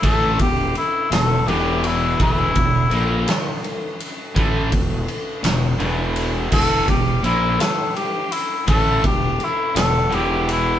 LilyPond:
<<
  \new Staff \with { instrumentName = "Cor anglais" } { \time 6/8 \key e \minor \tempo 4. = 56 a'8 g'8 e'8 a'8 g'8 e'8 | e'2 r4 | r2. | a'8 g'8 e'8 a'8 g'8 e'8 |
a'8 g'8 e'8 a'8 g'8 e'8 | }
  \new Staff \with { instrumentName = "Distorted electric guitar" } { \clef bass \time 6/8 \key e \minor <a, e a>8 <e, b,>8 r8 <e, b,>8 <e, b, e>4 | <e, b, e>8 <e, b,>8 <ais, f ais>8 r4. | <a, e a>8 <e, b,>8 r8 <e, b,>8 <e, b, e>4 | <e, b, e>8 <e, b,>8 <ais, f ais>8 r4. |
<a, e a>8 <e, b,>8 r8 <e, b,>8 <e, b, e>4 | }
  \new Staff \with { instrumentName = "Distorted electric guitar" } { \clef bass \time 6/8 \key e \minor <a, e a>8 <e, b,>8 r8 <e, b,>8 <e, b, e>4 | <e, b, e>8 <e, b,>8 <ais, f ais>8 r4. | <a, e a>8 <e, b,>8 r8 <e, b,>8 <e, b, e>4 | <e, b, e>8 <e, b,>8 <ais, f ais>8 r4. |
<a, e a>8 <e, b,>8 r8 <e, b,>8 <e, b, e>4 | }
  \new Staff \with { instrumentName = "Fingered electric bass" } { \clef bass \time 6/8 \key e \minor a,,8 e,,8 r8 e,,8 e,,4 | e,,8 e,,8 ais,,8 r4. | a,,8 e,,8 r8 e,,8 e,,4 | e,,8 e,,8 ais,,8 r4. |
a,,8 e,,8 r8 e,,8 e,,4 | }
  \new DrumStaff \with { instrumentName = "Drums" } \drummode { \time 6/8 <bd cymr>8 <bd cymr>8 cymr8 <cymr sn>8 cymr8 cymr8 | <bd cymr>8 <bd cymr>8 cymr8 <cymr sn>8 cymr8 cymr8 | <bd cymr>8 <bd cymr>8 cymr8 <cymr sn>8 cymr8 cymr8 | <cymc bd>8 <bd cymr>8 cymr8 <cymr sn>8 cymr8 cymr8 |
<bd cymr>8 <bd cymr>8 cymr8 <cymr sn>8 cymr8 cymr8 | }
>>